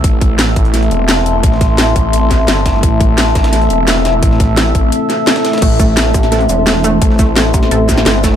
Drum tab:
CC |--------------------------------|--------------------------------|--------------------------------|--------------------------------|
HH |x---x---x---x-x-x-x-x---x---x---|x---x---x---x---x---x---x---x---|x---x---x---x-x-x-x-x---x---x---|x---x---x---x---x---x---x-x-x-xx|
SH |--------------------------------|--------------------------------|--------------------------------|--------------------------------|
SD |--------o-o-----o-------o-o-----|--o-o---o-----------o---o---o-o-|--------o-o-o-o-o-------o-o-o---|--o-o---o-----------o---o-o-o-oo|
BD |o---o-------o-------------------|o---o-------o-------o-------o---|o---o-------o-------------------|o---o-------o-------------------|

CC |x-------------------------------|--------------------------------|
HH |x---x---x---x-x-x-x-x---x---x---|x---x---x---x---x---x---x---x---|
SH |----x---x---x-------x-------x---|----x---x---x-------x-------x---|
SD |--------o-o---o-o-------o-o-----|--o-o---o-----o-----o-o-o---o-o-|
BD |o---o-------o-------------------|o---o-------o-------o-------o---|